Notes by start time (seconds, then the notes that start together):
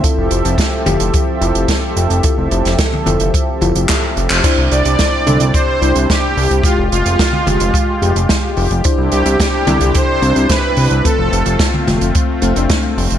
Already playing: C4 E5
0.04 F3 E4 F4 G4 A4, kick, closed hi-hat
0.18 F1
0.31 F1, closed hi-hat
0.45 F1, closed hi-hat
0.58 kick, snare, closed hi-hat
0.86 F1 E4 F4 G4, closed hi-hat, mid tom
1.00 F1, closed hi-hat
1.14 kick, closed hi-hat
1.41 F1 E4 F4 A4, closed hi-hat
1.55 F1, closed hi-hat
1.68 kick, snare, closed hi-hat
1.97 F1, closed hi-hat
2.10 F1, closed hi-hat
2.23 E4 F4 A4, kick, closed hi-hat
2.38 F1
2.51 F1, closed hi-hat
2.65 F1, snare, closed hi-hat
2.79 kick, snare, closed hi-hat
2.93 mid tom
3.06 F1 E4 F4 A4, closed hi-hat, mid tom
3.20 F1, closed hi-hat
3.34 kick, closed hi-hat
3.61 F1 E4 F4 A4, closed hi-hat, mid tom
3.75 F1 E4 F4 G4, closed hi-hat
3.89 kick, snare, clap, closed hi-hat
4.17 F1, closed hi-hat
4.30 F1, clap, closed hi-hat
4.44 C3 C4 D4 E4 G4 C5, kick, closed hi-hat, crash
4.58 C2
4.72 C2 D5, closed hi-hat
4.85 C2, closed hi-hat
4.99 kick, snare, closed hi-hat
5.27 C2 D4 E4 A4, closed hi-hat, mid tom
5.40 C2, closed hi-hat
5.54 C5, kick, closed hi-hat
5.82 C2 D4 E4 C5, closed hi-hat
5.96 C2, closed hi-hat
6.10 G4, kick, snare, closed hi-hat
6.37 C2, open hi-hat
6.51 C2, closed hi-hat
6.64 G#3 F4 G4, kick, closed hi-hat
6.78 F1
6.92 F1 F4, closed hi-hat
7.06 F1, closed hi-hat
7.19 kick, snare, closed hi-hat
7.33 mid tom
7.47 F1 G#3 F4 G4, closed hi-hat, mid tom
7.60 F1, closed hi-hat
7.74 kick, closed hi-hat
8.02 F1 G#3 F4 G4, closed hi-hat
8.16 F1, closed hi-hat
8.29 kick, snare, closed hi-hat
8.57 F1, open hi-hat
8.71 F1, closed hi-hat
8.84 C3 C4 D4 E4 C5, kick, closed hi-hat
8.98 C2
9.12 C2 G4, closed hi-hat
9.26 C2, closed hi-hat
9.40 kick, snare, closed hi-hat
9.67 C2 D4 E4 A4, closed hi-hat, mid tom
9.81 C2, closed hi-hat
9.95 C5, kick, closed hi-hat
10.22 C2 C4 D4 E4, closed hi-hat
10.36 C2, closed hi-hat
10.50 B4, kick, snare, closed hi-hat
10.77 C2, open hi-hat
10.91 C2, closed hi-hat
11.05 A3 C4 F4 A4, kick, closed hi-hat
11.18 F1
11.32 F1, closed hi-hat
11.46 F1, closed hi-hat
11.59 kick, snare, closed hi-hat
11.74 mid tom
11.87 F1 A3 C4 F4, snare, closed hi-hat, mid tom
12.01 F1, closed hi-hat
12.15 kick, closed hi-hat
12.42 F1 A3 C4 F4, closed hi-hat
12.56 F1 A3 C4 D4, closed hi-hat
12.70 kick, snare, closed hi-hat
12.97 F1, open hi-hat
13.10 F1, closed hi-hat